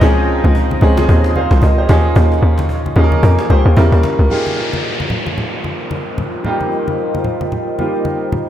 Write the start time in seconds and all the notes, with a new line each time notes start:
Already playing: G4 C5 D#5
0.01 C#2 F3 C4 C#4 D#4 F4 G#4 C6, cajon bass, low conga
0.17 cajon slap
0.28 cajon slap
0.44 C#2, cajon slap, high conga
0.55 cajon bass
0.71 cajon slap, high conga
0.81 C#2 F3 C4 C#4 D#4 G#4, cajon slap, low conga
0.97 F3 C4 C#4 D#4 G#4, cajon slap, high conga
1.09 D#2, cajon bass, low conga
1.24 cajon slap
1.36 C5 F5, cajon slap, high conga
1.51 C2, cajon slap
1.62 C#2 A#4 D#5, cajon bass, high conga
1.78 G4 C5, cajon slap
1.89 D#2 F3 A#3 C#4 D#4 G#4 F5 C#6, cajon bass, cajon slap, high conga
2.04 cajon slap
2.16 D#2, cajon bass, low conga
2.32 cajon slap
2.42 D#2, cajon slap
2.58 cajon slap, high conga
2.69 cajon bass
2.85 cajon slap, high conga
2.96 D#2 F3 A#3 C#4 D#4 G#4, cajon slap, low conga
3.04 A#4
3.12 cajon slap, high conga
3.23 F2, cajon bass, low conga
3.39 D#4 G#4, cajon slap
3.50 C#2 G4 C5, cajon slap, high conga
3.65 D#2 F4 A#4, cajon slap
3.76 E2 G3 A#3 C#4 E4 A#4, cajon bass, high conga
3.92 D#2, cajon slap
4.03 cajon slap, high conga
4.19 C#2, cajon slap
4.29 A#3 D#4 F4 G4 G#4 A#4 C5 D#5 G5, cajon slap, downlifter, low conga
4.46 cajon slap, high conga
4.57 cajon slap
4.73 high conga
4.84 cajon slap
5.00 high conga
5.10 low conga
5.26 cajon slap, high conga
5.38 cajon slap, low conga
5.53 cajon slap
5.64 cajon slap, high conga
5.80 cajon slap
5.91 cajon slap, high conga
6.07 cajon slap
6.18 cajon slap, high conga, low conga
6.33 cajon slap
6.44 G3 A#3 D#4 F4 G4, low conga
6.61 cajon slap, high conga
6.71 cajon slap
6.87 cajon slap, high conga
6.98 cajon slap
7.15 high conga
7.24 cajon slap, low conga
7.41 cajon slap, high conga
7.52 cajon slap, low conga
7.68 cajon slap
7.78 G3 A#3 D#4 F4 G4, cajon slap, high conga
7.94 cajon slap
8.05 cajon slap, high conga
8.21 cajon slap
8.32 cajon slap, high conga, low conga